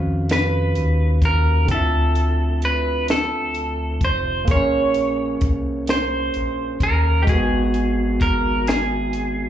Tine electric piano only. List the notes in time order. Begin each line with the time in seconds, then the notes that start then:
Already playing: D#3 C#4 F#4 C5 F5
1.65 D3 C4
1.72 E4 E5
1.78 F4
4.45 A#3 G#4
4.51 C#4 A#4
7.24 G#3 F#4
7.30 B3 G#4